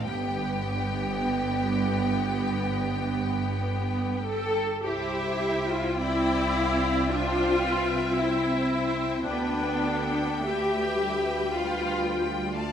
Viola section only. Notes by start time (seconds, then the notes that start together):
0.08 B3
4.26 A4
4.86 G4
5.71 F4
6.00 E4
7.11 F4
8.18 E4
9.26 D4
10.44 G4
11.53 F4